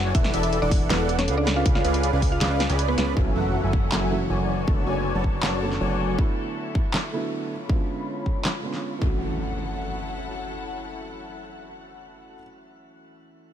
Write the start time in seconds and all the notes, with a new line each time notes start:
Already playing: F#1 F#3 E4 F#4 A4 B4 C#5 D5 F#5 G#5 B5
0.06 F#4
0.15 E1 E3 E4 E5 F#5, kick, closed hi-hat
0.24 A4, snare
0.34 E1 E3 E4 A4 D5 E5, closed hi-hat
0.43 D5, closed hi-hat
0.53 F#5, closed hi-hat
0.62 E1 E3 D4 E4 A4 D5 F#5
0.71 D5, kick, open hi-hat
0.81 E4
0.90 E1 E3 B3 E4 A4 B4 D5 F#5, snare, closed hi-hat
1.00 A4
1.09 D5, closed hi-hat
1.19 C#4 C#5 D5, snare, closed hi-hat
1.28 C#2 C#4 G#4 B4 D5 F5 F#5, closed hi-hat
1.38 D4 D5
1.47 D5, snare, closed hi-hat
1.56 F4 F5
1.66 C#2 B4, kick, closed hi-hat
1.75 F4 B4 F5, snare
1.84 C#2 C#4 F4 G#4 B4 D5 F5, closed hi-hat
1.94 D5, closed hi-hat
2.03 G#5, closed hi-hat
2.13 C#2 C#4 G#4 B4 D5 F5
2.22 D5, kick, open hi-hat
2.32 F4 F5
2.41 C#2 C#4 G#4 B4 D5 F5, snare, closed hi-hat
2.51 B4
2.60 F4, snare, closed hi-hat
2.70 C#2 C#4 G#4 B4 D5 B5, snare, closed hi-hat
2.79 G#4, closed hi-hat
2.88 B3 B4 C#5
2.98 C#2 C#4 F4 G#4 B4 D5 B5, snare, closed hi-hat
3.07 F5
3.15 F#1 E3 F#3 A3 C#4 E4 F#4 A4 C#5 E5 F#5 G#5, kick, impact
3.19 F#4
3.35 F#1 F#3 F#4 A4 E5 F#5
3.64 F#1 F#3 F#4 A4 E5 G#5
3.73 kick
3.92 F#1 F#3 F#4 A4 E5 G#5, snare, clap
4.10 E3 F#3 A3 C#4 F#4
4.30 F#1 F#3 F#4 C#5 D5 G#5
4.49 F#4 A4 B4
4.66 F#1 D3 F#3 A3 B3 F#4 C#5 D5 A5, kick
4.70 F#4
4.86 F#1 F#3 F#4 C#5 D5 G#5
5.15 F#1 F#3 F#4 C#5 D5 A5
5.24 kick
5.43 F#1 F#3 F#4 C#5 D5 A5, snare, clap
5.60 D3 F#3 A3 B3 F#4
5.71 snare
5.81 F#1 F#3 F#4 C#5 D5 G#5
6.17 D3 F#3 A3 B3 E4 E5, kick
6.75 kick
6.94 snare, clap
7.12 D3 F#3 A3 B3 E4
7.51 F4 C#5 B5
7.68 D3 G#3 B3 C#4, kick
7.72 F4
8.26 kick
8.45 snare, clap
8.62 D3 G#3 B3 C#4 F4
8.73 snare
8.99 E3 F#3 A3 E4 A4 F#5, kick, impact
9.03 C#4 F#4